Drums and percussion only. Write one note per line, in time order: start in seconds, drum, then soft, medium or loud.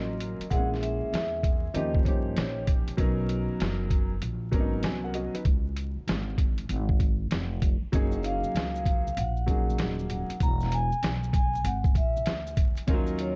0.20 closed hi-hat medium
0.41 closed hi-hat medium
0.51 kick loud
0.51 closed hi-hat loud
0.74 snare soft
0.83 closed hi-hat medium
1.14 snare loud
1.14 closed hi-hat medium
1.43 kick medium
1.43 closed hi-hat medium
1.75 closed hi-hat medium
1.95 kick loud
2.05 kick medium
2.05 closed hi-hat medium
2.36 snare loud
2.36 closed hi-hat medium
2.67 kick loud
2.67 closed hi-hat medium
2.88 closed hi-hat medium
2.98 kick loud
2.98 closed hi-hat loud
3.29 closed hi-hat medium
3.60 snare loud
3.60 closed hi-hat medium
3.90 kick medium
3.90 closed hi-hat medium
4.22 closed hi-hat loud
4.52 kick medium
4.52 closed hi-hat medium
4.83 snare loud
4.83 closed hi-hat medium
5.14 closed hi-hat medium
5.35 closed hi-hat medium
5.45 kick loud
5.45 closed hi-hat loud
5.76 closed hi-hat medium
6.08 snare loud
6.08 closed hi-hat medium
6.38 kick medium
6.38 closed hi-hat medium
6.58 closed hi-hat soft
6.69 closed hi-hat medium
6.89 kick loud
7.00 kick medium
7.00 closed hi-hat medium
7.31 snare loud
7.31 closed hi-hat medium
7.62 kick medium
7.62 closed hi-hat loud
7.93 kick loud
7.93 closed hi-hat loud
7.93 maracas medium
8.12 maracas soft
8.23 closed hi-hat medium
8.23 maracas soft
8.44 high conga medium
8.44 maracas soft
8.56 snare loud
8.56 closed hi-hat loud
8.56 maracas medium
8.76 maracas soft
8.86 kick medium
8.86 closed hi-hat medium
8.86 low conga medium
8.86 maracas soft
9.07 high conga medium
9.07 maracas medium
9.17 closed hi-hat loud
9.17 low conga medium
9.17 maracas medium
9.37 maracas soft
9.48 kick medium
9.48 closed hi-hat medium
9.48 maracas soft
9.70 high conga medium
9.70 maracas soft
9.78 snare loud
9.78 closed hi-hat medium
9.78 maracas medium
9.99 maracas soft
10.10 closed hi-hat medium
10.10 low conga soft
10.10 maracas soft
10.30 closed hi-hat medium
10.30 maracas soft
10.40 kick loud
10.40 closed hi-hat loud
10.40 maracas medium
10.61 snare soft
10.61 maracas soft
10.71 closed hi-hat medium
10.71 maracas soft
10.92 high conga soft
10.92 maracas medium
11.03 snare loud
11.03 closed hi-hat medium
11.03 maracas medium
11.23 maracas soft
11.33 kick medium
11.33 closed hi-hat medium
11.33 low conga medium
11.33 maracas soft
11.55 high conga soft
11.55 maracas soft
11.65 closed hi-hat medium
11.65 low conga medium
11.65 maracas medium
11.84 kick loud
11.84 maracas soft
11.95 kick medium
11.95 closed hi-hat medium
11.95 maracas soft
12.17 high conga medium
12.17 maracas soft
12.26 snare loud
12.26 closed hi-hat medium
12.26 maracas medium
12.47 maracas medium
12.57 kick loud
12.57 closed hi-hat medium
12.57 low conga medium
12.57 maracas soft
12.77 closed hi-hat medium
12.77 maracas soft
12.88 kick loud
12.88 closed hi-hat loud
12.88 maracas medium
13.07 maracas soft
13.18 closed hi-hat medium
13.18 maracas soft